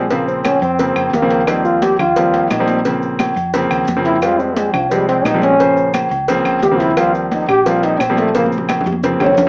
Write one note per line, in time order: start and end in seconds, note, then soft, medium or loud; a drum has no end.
0.00 0.56 A#1 medium
0.00 0.12 G#3 medium
0.10 0.59 C#3 medium
0.10 0.59 F3 medium
0.10 0.27 A#3 medium
0.10 0.59 A#3 medium
0.10 0.59 C4 medium
0.10 cowbell loud
0.10 high conga soft
0.10 low agogo medium
0.10 maracas medium
0.27 0.47 C4 medium
0.27 high conga soft
0.27 maracas soft
0.45 0.61 C#4 medium
0.45 cowbell medium
0.45 high conga loud
0.45 low agogo loud
0.45 claves medium
0.45 maracas medium
0.62 0.94 F2 loud
0.62 1.15 C4 medium
0.62 high conga soft
0.62 low agogo medium
0.62 maracas soft
0.79 1.09 C#3 medium
0.79 1.09 F3 medium
0.79 1.09 A#3 medium
0.79 1.09 C4 medium
0.79 cowbell loud
0.79 high conga soft
0.79 maracas medium
0.96 1.12 F2 medium
0.96 high conga soft
0.96 low agogo loud
0.96 claves medium
0.96 maracas soft
1.13 1.93 D#2 medium
1.13 1.49 A#3 medium
1.13 cowbell medium
1.13 high conga medium
1.13 low timbale medium
1.13 maracas medium
1.22 1.40 C#3 medium
1.22 1.40 F3 medium
1.22 1.40 A#3 medium
1.22 1.40 C4 medium
1.30 cowbell medium
1.30 high conga soft
1.30 low agogo medium
1.30 maracas soft
1.48 1.96 F3 medium
1.48 1.96 G3 medium
1.48 1.96 A#3 medium
1.48 1.96 C4 medium
1.48 1.64 D#4 medium
1.48 cowbell loud
1.48 high conga soft
1.48 low agogo loud
1.48 claves medium
1.48 maracas medium
1.65 1.84 F4 medium
1.65 high conga soft
1.65 maracas soft
1.82 1.99 G4 medium
1.82 cowbell medium
1.82 high conga loud
1.82 low agogo medium
1.82 maracas medium
1.99 2.47 D#2 medium
1.99 2.53 F4 medium
1.99 low conga medium
1.99 low agogo loud
1.99 claves medium
1.99 maracas soft
2.16 2.47 F3 medium
2.16 2.47 G3 medium
2.16 2.47 A#3 medium
2.16 2.47 C4 medium
2.16 cowbell loud
2.16 high conga soft
2.16 maracas medium
2.33 cowbell medium
2.33 high conga soft
2.33 low agogo medium
2.33 maracas soft
2.50 3.31 A#1 medium
2.50 2.85 D#4 medium
2.50 cowbell medium
2.50 high conga medium
2.50 low timbale medium
2.50 low agogo loud
2.50 claves medium
2.50 maracas medium
2.60 2.78 F3 medium
2.60 2.77 G3 medium
2.60 2.78 A#3 medium
2.60 2.78 C4 medium
2.67 cowbell medium
2.67 high conga medium
2.67 maracas soft
2.85 3.33 C#3 medium
2.85 3.33 F3 medium
2.85 3.33 A#3 medium
2.85 3.33 C4 medium
2.85 cowbell loud
2.85 low agogo medium
2.85 maracas medium
3.02 high conga soft
3.02 maracas soft
3.19 cowbell medium
3.19 high conga medium
3.19 low agogo loud
3.19 claves medium
3.19 maracas medium
3.36 3.68 F2 medium
3.36 high conga soft
3.36 low agogo medium
3.36 maracas soft
3.54 3.84 C#3 medium
3.54 3.84 F3 medium
3.54 3.84 A#3 medium
3.54 3.84 C4 loud
3.54 cowbell loud
3.54 high conga soft
3.54 maracas medium
3.71 3.87 D#2 medium
3.71 high conga soft
3.71 low agogo loud
3.71 claves medium
3.71 maracas soft
3.87 4.68 F2 medium
3.87 cowbell medium
3.87 high conga medium
3.87 maracas medium
3.96 4.15 C#3 medium
3.96 4.15 F3 medium
3.96 4.15 A#3 medium
3.96 4.15 C4 medium
4.05 4.24 E4 loud
4.05 cowbell medium
4.05 high conga soft
4.05 low agogo medium
4.05 maracas soft
4.22 4.71 F3 medium
4.22 4.71 G3 medium
4.22 4.71 G#3 medium
4.22 4.71 C4 medium
4.22 4.41 F4 medium
4.22 cowbell loud
4.22 high conga soft
4.22 low agogo loud
4.22 claves medium
4.22 maracas medium
4.39 4.58 C4 medium
4.39 high conga soft
4.39 maracas soft
4.57 4.73 G#3 medium
4.57 cowbell medium
4.57 high conga loud
4.57 low agogo medium
4.57 maracas medium
4.73 5.22 C2 medium
4.73 4.93 F3 medium
4.73 low conga medium
4.73 low agogo loud
4.73 claves medium
4.73 maracas soft
4.91 5.21 F3 medium
4.91 5.21 G3 medium
4.91 5.08 G3 medium
4.91 5.21 G#3 medium
4.91 5.21 C4 medium
4.91 cowbell loud
4.91 high conga soft
4.91 maracas medium
5.08 5.27 C4 medium
5.08 cowbell medium
5.08 high conga soft
5.08 low agogo medium
5.08 maracas soft
5.25 6.05 A#1 medium
5.25 5.42 D#4 medium
5.25 cowbell medium
5.25 high conga medium
5.25 low timbale medium
5.25 low agogo loud
5.25 claves medium
5.25 maracas medium
5.34 5.52 F3 medium
5.34 5.52 G3 medium
5.34 5.52 G#3 medium
5.34 5.52 C4 medium
5.42 5.91 C#4 loud
5.42 cowbell medium
5.42 high conga medium
5.42 maracas soft
5.59 6.08 C#3 medium
5.59 6.08 F3 medium
5.59 6.08 A#3 medium
5.59 6.08 C5 medium
5.59 cowbell loud
5.59 high conga soft
5.59 low agogo medium
5.59 maracas medium
5.77 high conga soft
5.77 maracas soft
5.94 cowbell medium
5.94 high conga loud
5.94 low agogo loud
5.94 claves medium
5.94 maracas medium
6.11 6.43 C#2 medium
6.11 high conga soft
6.11 low agogo medium
6.11 maracas soft
6.28 6.59 C#3 medium
6.28 6.59 F3 medium
6.28 6.59 A#3 medium
6.28 6.59 C4 loud
6.28 cowbell loud
6.28 high conga soft
6.28 maracas medium
6.45 6.62 C#2 medium
6.45 high conga soft
6.45 low agogo loud
6.45 claves medium
6.45 maracas soft
6.63 7.43 D#2 medium
6.63 6.81 G4 medium
6.63 cowbell medium
6.63 high conga medium
6.63 low timbale medium
6.63 maracas medium
6.71 6.89 C#3 medium
6.71 6.90 F3 medium
6.71 6.90 A#3 medium
6.71 6.90 C4 medium
6.80 6.99 E4 medium
6.80 cowbell medium
6.80 high conga soft
6.80 low agogo medium
6.80 maracas soft
6.97 7.45 F3 medium
6.97 7.45 G3 medium
6.97 7.45 A#3 medium
6.97 7.46 C4 medium
6.97 7.15 F4 loud
6.97 cowbell loud
6.97 high conga soft
6.97 low agogo loud
6.97 claves medium
6.97 maracas medium
7.15 7.31 A#3 medium
7.15 high conga soft
7.15 maracas soft
7.31 7.49 D#4 medium
7.31 cowbell medium
7.31 high conga loud
7.31 low agogo medium
7.31 maracas medium
7.48 7.96 A#1 medium
7.48 7.68 G4 loud
7.48 low conga medium
7.48 low agogo loud
7.48 claves medium
7.48 maracas soft
7.66 7.96 F3 medium
7.66 7.96 G3 medium
7.66 7.96 A#3 medium
7.66 7.96 C4 medium
7.66 7.85 F4 medium
7.66 cowbell loud
7.66 high conga soft
7.66 maracas medium
7.83 8.02 D#4 loud
7.83 cowbell medium
7.83 high conga soft
7.83 low agogo medium
7.83 maracas soft
8.00 8.80 A#1 medium
8.00 8.17 C4 medium
8.00 cowbell medium
8.00 high conga medium
8.00 low agogo loud
8.00 claves medium
8.00 maracas medium
8.09 8.27 F3 medium
8.09 8.27 G3 medium
8.09 8.27 A#3 medium
8.09 8.27 C4 medium
8.17 8.34 A3 medium
8.17 cowbell medium
8.17 high conga medium
8.17 maracas soft
8.35 8.83 C#3 medium
8.35 8.83 F3 medium
8.35 8.83 A#3 medium
8.35 8.46 A#3 medium
8.35 8.83 C4 medium
8.35 cowbell loud
8.35 high conga medium
8.35 low agogo medium
8.35 maracas medium
8.46 high conga medium
8.52 maracas soft
8.58 high conga medium
8.69 cowbell medium
8.69 high conga loud
8.69 low agogo loud
8.69 claves medium
8.69 maracas medium
8.81 low conga medium
8.86 9.18 F2 loud
8.86 high bongo medium
8.86 low agogo medium
8.86 maracas soft
8.92 high conga medium
9.03 9.34 C#3 medium
9.03 9.34 F3 medium
9.03 9.34 A#3 medium
9.03 9.34 C4 loud
9.03 cowbell loud
9.03 low conga medium
9.03 maracas medium
9.20 9.36 D#2 medium
9.20 9.49 F2 medium
9.20 9.49 C#5 medium
9.20 high bongo loud
9.20 high timbale medium
9.20 low agogo loud
9.20 claves medium
9.20 maracas soft
9.26 low conga loud
9.37 9.49 F2 medium
9.37 cowbell medium
9.37 low conga medium
9.37 high timbale medium
9.37 maracas medium